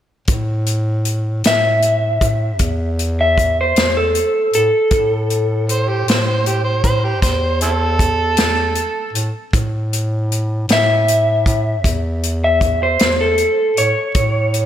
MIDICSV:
0, 0, Header, 1, 5, 480
1, 0, Start_track
1, 0, Tempo, 770218
1, 181, Time_signature, 12, 3, 24, 8
1, 9134, End_track
2, 0, Start_track
2, 0, Title_t, "Clean electric guitar"
2, 0, Program_c, 0, 27
2, 916, Note_on_c, 0, 76, 89
2, 1965, Note_off_c, 0, 76, 0
2, 1999, Note_on_c, 0, 76, 67
2, 2224, Note_off_c, 0, 76, 0
2, 2248, Note_on_c, 0, 72, 72
2, 2469, Note_off_c, 0, 72, 0
2, 2474, Note_on_c, 0, 69, 73
2, 2818, Note_off_c, 0, 69, 0
2, 2836, Note_on_c, 0, 69, 85
2, 3765, Note_off_c, 0, 69, 0
2, 6685, Note_on_c, 0, 76, 91
2, 7726, Note_off_c, 0, 76, 0
2, 7755, Note_on_c, 0, 76, 75
2, 7980, Note_off_c, 0, 76, 0
2, 7995, Note_on_c, 0, 72, 72
2, 8220, Note_off_c, 0, 72, 0
2, 8231, Note_on_c, 0, 69, 78
2, 8573, Note_off_c, 0, 69, 0
2, 8589, Note_on_c, 0, 73, 78
2, 9134, Note_off_c, 0, 73, 0
2, 9134, End_track
3, 0, Start_track
3, 0, Title_t, "Harmonica"
3, 0, Program_c, 1, 22
3, 3550, Note_on_c, 1, 72, 90
3, 3669, Note_on_c, 1, 67, 78
3, 3678, Note_off_c, 1, 72, 0
3, 3778, Note_off_c, 1, 67, 0
3, 3793, Note_on_c, 1, 72, 77
3, 3900, Note_off_c, 1, 72, 0
3, 3905, Note_on_c, 1, 72, 76
3, 4016, Note_off_c, 1, 72, 0
3, 4031, Note_on_c, 1, 67, 70
3, 4137, Note_off_c, 1, 67, 0
3, 4141, Note_on_c, 1, 72, 72
3, 4254, Note_off_c, 1, 72, 0
3, 4261, Note_on_c, 1, 72, 86
3, 4386, Note_on_c, 1, 67, 75
3, 4396, Note_off_c, 1, 72, 0
3, 4496, Note_off_c, 1, 67, 0
3, 4500, Note_on_c, 1, 72, 76
3, 4734, Note_off_c, 1, 72, 0
3, 4748, Note_on_c, 1, 60, 60
3, 4748, Note_on_c, 1, 64, 60
3, 4748, Note_on_c, 1, 69, 86
3, 4798, Note_off_c, 1, 64, 0
3, 4803, Note_off_c, 1, 60, 0
3, 5680, Note_off_c, 1, 69, 0
3, 9134, End_track
4, 0, Start_track
4, 0, Title_t, "Bass clarinet"
4, 0, Program_c, 2, 71
4, 174, Note_on_c, 2, 45, 89
4, 873, Note_off_c, 2, 45, 0
4, 900, Note_on_c, 2, 45, 84
4, 1357, Note_off_c, 2, 45, 0
4, 1376, Note_on_c, 2, 45, 81
4, 1615, Note_on_c, 2, 40, 93
4, 1624, Note_off_c, 2, 45, 0
4, 2314, Note_off_c, 2, 40, 0
4, 2341, Note_on_c, 2, 40, 78
4, 2629, Note_off_c, 2, 40, 0
4, 2827, Note_on_c, 2, 45, 75
4, 2936, Note_off_c, 2, 45, 0
4, 3059, Note_on_c, 2, 45, 88
4, 3756, Note_off_c, 2, 45, 0
4, 3777, Note_on_c, 2, 45, 88
4, 4235, Note_off_c, 2, 45, 0
4, 4261, Note_on_c, 2, 45, 85
4, 4502, Note_on_c, 2, 40, 93
4, 4511, Note_off_c, 2, 45, 0
4, 5197, Note_off_c, 2, 40, 0
4, 5225, Note_on_c, 2, 40, 78
4, 5511, Note_off_c, 2, 40, 0
4, 5690, Note_on_c, 2, 45, 80
4, 5806, Note_off_c, 2, 45, 0
4, 5942, Note_on_c, 2, 45, 88
4, 6636, Note_off_c, 2, 45, 0
4, 6654, Note_on_c, 2, 45, 89
4, 7112, Note_off_c, 2, 45, 0
4, 7143, Note_on_c, 2, 45, 92
4, 7380, Note_on_c, 2, 40, 94
4, 7390, Note_off_c, 2, 45, 0
4, 8074, Note_off_c, 2, 40, 0
4, 8096, Note_on_c, 2, 40, 82
4, 8383, Note_off_c, 2, 40, 0
4, 8579, Note_on_c, 2, 45, 77
4, 8688, Note_off_c, 2, 45, 0
4, 8819, Note_on_c, 2, 45, 93
4, 9134, Note_off_c, 2, 45, 0
4, 9134, End_track
5, 0, Start_track
5, 0, Title_t, "Drums"
5, 171, Note_on_c, 9, 42, 70
5, 176, Note_on_c, 9, 36, 100
5, 233, Note_off_c, 9, 42, 0
5, 238, Note_off_c, 9, 36, 0
5, 414, Note_on_c, 9, 42, 54
5, 476, Note_off_c, 9, 42, 0
5, 654, Note_on_c, 9, 42, 51
5, 717, Note_off_c, 9, 42, 0
5, 897, Note_on_c, 9, 42, 76
5, 908, Note_on_c, 9, 38, 88
5, 960, Note_off_c, 9, 42, 0
5, 970, Note_off_c, 9, 38, 0
5, 1136, Note_on_c, 9, 42, 60
5, 1199, Note_off_c, 9, 42, 0
5, 1379, Note_on_c, 9, 36, 72
5, 1382, Note_on_c, 9, 42, 61
5, 1441, Note_off_c, 9, 36, 0
5, 1444, Note_off_c, 9, 42, 0
5, 1614, Note_on_c, 9, 42, 72
5, 1618, Note_on_c, 9, 36, 74
5, 1676, Note_off_c, 9, 42, 0
5, 1681, Note_off_c, 9, 36, 0
5, 1863, Note_on_c, 9, 42, 53
5, 1926, Note_off_c, 9, 42, 0
5, 2104, Note_on_c, 9, 36, 68
5, 2110, Note_on_c, 9, 42, 59
5, 2166, Note_off_c, 9, 36, 0
5, 2172, Note_off_c, 9, 42, 0
5, 2344, Note_on_c, 9, 42, 69
5, 2355, Note_on_c, 9, 38, 93
5, 2406, Note_off_c, 9, 42, 0
5, 2417, Note_off_c, 9, 38, 0
5, 2585, Note_on_c, 9, 42, 56
5, 2647, Note_off_c, 9, 42, 0
5, 2825, Note_on_c, 9, 42, 54
5, 2887, Note_off_c, 9, 42, 0
5, 3058, Note_on_c, 9, 42, 73
5, 3062, Note_on_c, 9, 36, 92
5, 3120, Note_off_c, 9, 42, 0
5, 3124, Note_off_c, 9, 36, 0
5, 3304, Note_on_c, 9, 42, 48
5, 3366, Note_off_c, 9, 42, 0
5, 3546, Note_on_c, 9, 42, 53
5, 3609, Note_off_c, 9, 42, 0
5, 3789, Note_on_c, 9, 42, 68
5, 3800, Note_on_c, 9, 38, 86
5, 3852, Note_off_c, 9, 42, 0
5, 3862, Note_off_c, 9, 38, 0
5, 4026, Note_on_c, 9, 42, 54
5, 4089, Note_off_c, 9, 42, 0
5, 4262, Note_on_c, 9, 36, 76
5, 4263, Note_on_c, 9, 42, 56
5, 4324, Note_off_c, 9, 36, 0
5, 4325, Note_off_c, 9, 42, 0
5, 4502, Note_on_c, 9, 36, 74
5, 4503, Note_on_c, 9, 42, 69
5, 4514, Note_on_c, 9, 38, 28
5, 4564, Note_off_c, 9, 36, 0
5, 4566, Note_off_c, 9, 42, 0
5, 4576, Note_off_c, 9, 38, 0
5, 4741, Note_on_c, 9, 42, 52
5, 4803, Note_off_c, 9, 42, 0
5, 4982, Note_on_c, 9, 36, 67
5, 4986, Note_on_c, 9, 42, 57
5, 5044, Note_off_c, 9, 36, 0
5, 5049, Note_off_c, 9, 42, 0
5, 5215, Note_on_c, 9, 42, 75
5, 5226, Note_on_c, 9, 38, 85
5, 5277, Note_off_c, 9, 42, 0
5, 5288, Note_off_c, 9, 38, 0
5, 5454, Note_on_c, 9, 42, 56
5, 5517, Note_off_c, 9, 42, 0
5, 5703, Note_on_c, 9, 42, 62
5, 5765, Note_off_c, 9, 42, 0
5, 5942, Note_on_c, 9, 36, 96
5, 5943, Note_on_c, 9, 42, 75
5, 6004, Note_off_c, 9, 36, 0
5, 6006, Note_off_c, 9, 42, 0
5, 6188, Note_on_c, 9, 42, 57
5, 6250, Note_off_c, 9, 42, 0
5, 6430, Note_on_c, 9, 42, 53
5, 6492, Note_off_c, 9, 42, 0
5, 6661, Note_on_c, 9, 42, 69
5, 6672, Note_on_c, 9, 38, 95
5, 6723, Note_off_c, 9, 42, 0
5, 6734, Note_off_c, 9, 38, 0
5, 6906, Note_on_c, 9, 42, 59
5, 6968, Note_off_c, 9, 42, 0
5, 7142, Note_on_c, 9, 36, 73
5, 7148, Note_on_c, 9, 42, 55
5, 7204, Note_off_c, 9, 36, 0
5, 7210, Note_off_c, 9, 42, 0
5, 7381, Note_on_c, 9, 36, 75
5, 7385, Note_on_c, 9, 42, 69
5, 7443, Note_off_c, 9, 36, 0
5, 7447, Note_off_c, 9, 42, 0
5, 7624, Note_on_c, 9, 42, 53
5, 7686, Note_off_c, 9, 42, 0
5, 7859, Note_on_c, 9, 36, 73
5, 7863, Note_on_c, 9, 42, 53
5, 7922, Note_off_c, 9, 36, 0
5, 7925, Note_off_c, 9, 42, 0
5, 8097, Note_on_c, 9, 42, 69
5, 8108, Note_on_c, 9, 38, 94
5, 8159, Note_off_c, 9, 42, 0
5, 8170, Note_off_c, 9, 38, 0
5, 8336, Note_on_c, 9, 42, 54
5, 8399, Note_off_c, 9, 42, 0
5, 8582, Note_on_c, 9, 42, 58
5, 8644, Note_off_c, 9, 42, 0
5, 8816, Note_on_c, 9, 42, 72
5, 8818, Note_on_c, 9, 36, 98
5, 8878, Note_off_c, 9, 42, 0
5, 8881, Note_off_c, 9, 36, 0
5, 9059, Note_on_c, 9, 42, 59
5, 9122, Note_off_c, 9, 42, 0
5, 9134, End_track
0, 0, End_of_file